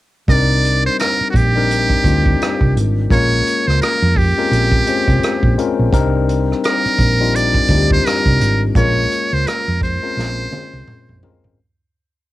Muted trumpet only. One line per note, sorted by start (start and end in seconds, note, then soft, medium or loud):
0.30 0.82 D5 loud
0.86 0.99 C5 medium
1.00 1.27 A#4 medium
1.30 1.38 F#4 soft
1.37 2.77 G4 medium
3.12 3.69 C#5 loud
3.68 3.81 C5 medium
3.82 4.19 A#4 medium
4.17 5.58 G4 medium
6.65 7.37 A#4 medium
7.36 7.92 D5 medium
7.92 8.07 C5 medium
8.06 8.62 A#4 medium
8.77 9.35 C#5 medium
9.34 9.49 C5 medium
9.47 9.82 A#4 medium
9.84 11.20 C5 medium